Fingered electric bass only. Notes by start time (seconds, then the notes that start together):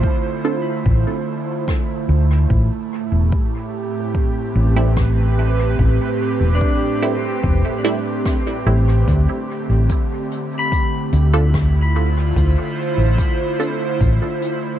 0.86 A1
2.09 D2
2.50 A1
3.12 E1
4.56 A1
5.79 A1
6.40 E1
7.43 E1
8.66 A1
9.08 D2
9.70 A1
11.13 D2
12.36 D2
12.98 A1
14.01 A1